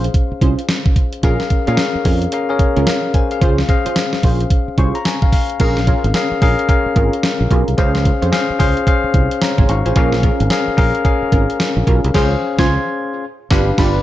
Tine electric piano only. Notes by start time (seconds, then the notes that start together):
Already playing: C#4 G#4 C5 F5
1.23 C#4 G#4 A#4 F5
1.67 C#4 G#4 A#4 F5
2.32 C#4 G#4 A#4 F5
2.49 C#4 G#4 A#4 C#5
2.87 G#4 F5
3.15 C5 G#5
3.32 G#4 F5
3.69 C#4 G#4 C5 F5
4.78 C#6
4.95 A#5
5.06 G#5
5.23 F5
5.33 F5
5.60 C#4 G#4 A#4 F5
6.14 C#4 G#4 A#4 F5
6.42 C#4 G#4 A#4 F5
6.68 C#4 G#4 A#4 F5
7.78 C#4 G#4 C5 F5
8.32 C#4 G#4 C5 F5
8.59 C#4 G#4 C5 F5
8.87 C#4 G#4 C5 F5
9.42 C#5 A#5
9.70 F5 C#6
9.86 C5 G#5
9.96 C#4 G#4 A#4 F5
10.50 C#4 G#4 A#4 F5
10.77 C#4 G#4 A#4 F5
11.05 C#4 G#4 A#4 F5
12.14 C#4 G#4 C5 F5
12.59 C6 G#6
13.51 D4 G4 B4 F5
13.79 D5 B5